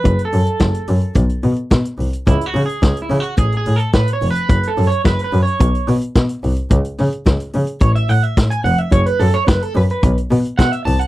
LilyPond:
<<
  \new Staff \with { instrumentName = "Clean electric guitar" } { \time 4/4 \key fis \minor \tempo 4 = 108 \tuplet 3/2 { b'8 a'4~ } a'4.~ a'16 r4 r16 | \tuplet 3/2 { e'8 fis'8 gis'8~ gis'8 e'8 fis'8 gis'8 gis'8 a'8 b'8 cis''8 b'8~ } | \tuplet 3/2 { b'8 a'8 cis''8 b'8 b'8 cis''8~ } cis''8. r4 r16 | r2 cis''16 e''16 fis''16 e''8 gis''16 fis''16 e''16 |
cis''16 b'16 a'16 cis''16 b'16 a'16 b'16 b'8 r8. fis''16 e''16 a''16 fis''16 | }
  \new Staff \with { instrumentName = "Double bass" } { \clef bass \time 4/4 \key fis \minor fis,,8 fis,8 fis,,8 fis,8 b,,8 b,8 b,8 bis,,8 | cis,8 cis8 cis,8 cis8 a,,8 a,8 a,8 eis,,8 | fis,,8 fis,8 fis,,8 fis,8 b,,8 b,8 b,8 bis,,8 | cis,8 cis8 cis,8 cis8 a,,8 a,8 a,8 f,,8 |
fis,,8 fis,8 fis,,8 fis,8 b,,8 b,8 b,8 c,8 | }
  \new DrumStaff \with { instrumentName = "Drums" } \drummode { \time 4/4 <hh bd>16 hh16 hho16 hh16 <hh bd sn>16 hh16 hho16 hh16 <hh bd>16 hh16 hho16 hh16 <hh bd sn>16 hh16 hho16 hh16 | <hh bd>16 hh16 hho16 hh16 <hh bd sn>16 hh16 hho16 hh16 <hh bd>16 hh16 hho16 hh16 <hh bd sn>16 hh16 hho16 hh16 | <hh bd>16 hh16 hho16 hh16 <hh bd sn>16 hh16 hho16 hh16 <hh bd>16 hh16 hho16 hh16 <hh bd sn>16 hh16 hho16 hh16 | <hh bd>16 hh16 hho16 hh16 <hh bd sn>16 hh16 hho16 hh16 <hh bd>16 hh16 hho16 hh16 <hh bd sn>16 hh16 hho16 hh16 |
<hh bd>16 hh16 hho16 hh16 <hh bd sn>16 hh16 hho16 hh16 <hh bd>16 hh16 hho16 hh16 <hh bd sn>16 hh16 hho16 hh16 | }
>>